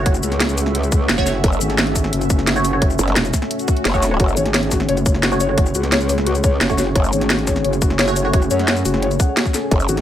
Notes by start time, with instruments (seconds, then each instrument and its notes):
Already playing: wobble bass F#1, ambient pad A3 C#4 F#4 E5
0.06 kick, closed hi-hat
0.14 shaker
0.23 wobble bass C#2, closed hi-hat, shaker
0.32 snare, closed hi-hat
0.40 snare, closed hi-hat
0.49 closed hi-hat, shaker
0.58 open hi-hat, shaker
0.66 snare
0.75 closed hi-hat
0.83 closed hi-hat, shaker
0.92 kick, closed hi-hat, shaker
1.09 wobble bass F#1, snare, closed hi-hat
1.18 synth stab A3 F#4 C#5, kick, shaker
1.27 snare, open hi-hat, shaker
1.44 wobble bass F#1, kick, closed hi-hat
1.52 shaker
1.61 wobble bass G#1, closed hi-hat, shaker
1.70 snare, closed hi-hat
1.78 snare, closed hi-hat
1.87 closed hi-hat
1.96 kick, open hi-hat, shaker
2.04 snare
2.13 wobble bass F#1, closed hi-hat
2.21 closed hi-hat, shaker
2.30 kick, closed hi-hat, shaker
2.39 snare
2.47 snare, closed hi-hat
2.56 synth stab A3 F#4 C#5, shaker
2.65 open hi-hat, shaker
2.73 synth stab A3 F#4 C#5
2.82 kick, closed hi-hat
2.90 shaker
2.99 wobble bass F#1, closed hi-hat, shaker
3.08 snare, closed hi-hat
3.16 wobble bass E1, snare, closed hi-hat
3.25 closed hi-hat, shaker
3.33 kick, snare, open hi-hat, shaker
3.42 snare
3.51 closed hi-hat, swell
3.59 closed hi-hat, shaker
3.68 kick, closed hi-hat, shaker
3.77 closed hi-hat
3.85 wobble bass F#1, snare, closed hi-hat
3.94 synth stab A3 F#4 C#5, kick, shaker
4.02 snare, open hi-hat, shaker
4.11 synth stab A3 F#4 C#5
4.20 wobble bass F#1, felt piano F#4, ambient pad G#4 C#5, kick, closed hi-hat
4.28 shaker
4.37 wobble bass G#1, felt piano C#5, closed hi-hat, shaker
4.46 snare, closed hi-hat
4.54 felt piano C#5, snare, closed hi-hat
4.63 closed hi-hat
4.71 felt piano F#4, kick, snare, open hi-hat, shaker
4.80 snare
4.89 wobble bass F#1, felt piano C#5, closed hi-hat
4.97 closed hi-hat, shaker
5.06 felt piano C#5, kick, closed hi-hat, shaker
5.14 snare
5.23 felt piano F#4, snare, closed hi-hat
5.32 synth stab A3 F#4 C#5, shaker
5.40 felt piano C#5, open hi-hat, shaker
5.49 synth stab A3 F#4 C#5
5.58 felt piano C#5, kick, closed hi-hat
5.66 shaker
5.75 wobble bass C#2, felt piano F#4, closed hi-hat, shaker
5.83 snare, closed hi-hat
5.92 felt piano C#5, snare, closed hi-hat
6.01 closed hi-hat, shaker
6.09 felt piano C#5, open hi-hat, shaker
6.18 snare
6.26 felt piano F#4, closed hi-hat
6.35 closed hi-hat, shaker
6.44 felt piano C#5, kick, closed hi-hat, shaker
6.61 wobble bass F#1, felt piano C#5, snare, closed hi-hat
6.70 synth stab A3 F#4 C#5, kick, shaker
6.78 felt piano F#4, snare, open hi-hat, shaker
6.95 wobble bass F#1, felt piano C#5, kick, closed hi-hat
7.04 shaker
7.13 wobble bass G#1, felt piano C#5, closed hi-hat, shaker
7.21 snare, closed hi-hat
7.30 felt piano F#4, snare, closed hi-hat
7.39 closed hi-hat
7.47 felt piano C#5, kick, snare, open hi-hat, shaker
7.56 snare
7.64 wobble bass F#1, felt piano C#5, closed hi-hat
7.73 closed hi-hat, shaker
7.82 felt piano F#4, kick, closed hi-hat, shaker
7.90 snare
7.99 felt piano C#5, snare, closed hi-hat
8.08 synth stab A3 F#4 C#5, shaker
8.16 felt piano C#5, open hi-hat, shaker
8.25 synth stab A3 F#4 C#5
8.33 felt piano F#4, kick, closed hi-hat
8.42 shaker
8.51 wobble bass F#2, felt piano C#5, closed hi-hat, shaker
8.59 snare, closed hi-hat
8.68 felt piano C#5, snare, closed hi-hat
8.77 closed hi-hat, shaker
8.85 wobble bass F#1, felt piano F#4, open hi-hat, shaker
8.94 snare
9.02 felt piano C#5, closed hi-hat
9.11 closed hi-hat, shaker
9.20 felt piano F#5, kick, closed hi-hat, shaker
9.37 felt piano F#4, snare, closed hi-hat
9.46 kick, shaker
9.54 felt piano A4, snare, open hi-hat, shaker
9.71 wobble bass F#1, ambient pad B4, felt piano C#5, kick, closed hi-hat
9.80 shaker
9.89 wobble bass G#1, felt piano F#4, closed hi-hat, shaker
9.97 snare, closed hi-hat